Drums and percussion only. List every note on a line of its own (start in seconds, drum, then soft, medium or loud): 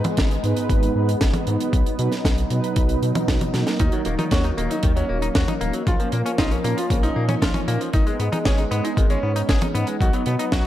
0.04 closed hi-hat medium
0.04 high tom medium
0.17 kick loud
0.17 snare loud
0.17 closed hi-hat medium
0.31 closed hi-hat medium
0.44 closed hi-hat medium
0.57 closed hi-hat medium
0.70 kick loud
0.70 closed hi-hat medium
0.83 closed hi-hat medium
1.09 closed hi-hat medium
1.21 kick loud
1.21 snare loud
1.21 closed hi-hat loud
1.34 closed hi-hat medium
1.34 high tom medium
1.47 closed hi-hat medium
1.60 closed hi-hat medium
1.73 kick loud
1.73 closed hi-hat loud
1.86 closed hi-hat medium
1.99 closed hi-hat medium
2.12 snare soft
2.12 closed hi-hat medium
2.25 kick loud
2.25 snare loud
2.25 closed hi-hat loud
2.38 closed hi-hat medium
2.50 closed hi-hat medium
2.64 closed hi-hat medium
2.76 kick loud
2.76 closed hi-hat loud
2.89 closed hi-hat medium
3.03 closed hi-hat medium
3.15 closed hi-hat medium
3.15 high tom medium
3.28 kick loud
3.28 snare loud
3.28 closed hi-hat medium
3.41 closed hi-hat medium
3.41 high tom medium
3.54 snare medium
3.54 closed hi-hat medium
3.67 snare medium
3.67 closed hi-hat medium
3.80 kick loud
3.80 closed hi-hat loud
3.92 closed hi-hat medium
4.05 closed hi-hat medium
4.19 closed hi-hat medium
4.19 high tom medium
4.31 kick loud
4.31 snare loud
4.31 closed hi-hat loud
4.44 closed hi-hat medium
4.58 closed hi-hat medium
4.71 closed hi-hat medium
4.83 kick loud
4.83 closed hi-hat loud
4.97 closed hi-hat medium
5.22 closed hi-hat medium
5.35 kick loud
5.35 snare loud
5.35 closed hi-hat loud
5.48 closed hi-hat medium
5.48 high tom medium
5.61 closed hi-hat medium
5.73 closed hi-hat soft
5.87 kick loud
5.87 closed hi-hat medium
6.00 closed hi-hat medium
6.12 closed hi-hat medium
6.26 closed hi-hat medium
6.38 kick loud
6.38 snare loud
6.38 closed hi-hat medium
6.51 closed hi-hat medium
6.64 closed hi-hat medium
6.78 closed hi-hat medium
6.90 kick loud
6.90 closed hi-hat loud
7.03 closed hi-hat medium
7.29 closed hi-hat medium
7.29 high tom medium
7.42 kick loud
7.42 snare loud
7.42 closed hi-hat loud
7.54 closed hi-hat medium
7.54 high tom medium
7.68 closed hi-hat medium
7.81 closed hi-hat soft
7.93 kick loud
7.93 closed hi-hat medium
8.07 closed hi-hat medium
8.20 closed hi-hat medium
8.33 closed hi-hat medium
8.33 high tom medium
8.45 kick loud
8.45 snare loud
8.45 closed hi-hat medium
8.58 closed hi-hat medium
8.72 closed hi-hat medium
8.85 closed hi-hat medium
8.97 kick loud
8.97 closed hi-hat medium
9.10 closed hi-hat soft
9.36 closed hi-hat medium
9.49 kick loud
9.49 snare loud
9.49 closed hi-hat medium
9.61 closed hi-hat medium
9.61 high tom medium
9.75 closed hi-hat medium
9.87 closed hi-hat medium
10.01 kick loud
10.01 closed hi-hat loud
10.13 closed hi-hat medium
10.26 closed hi-hat medium
10.39 closed hi-hat medium
10.52 kick loud
10.52 snare loud
10.52 closed hi-hat loud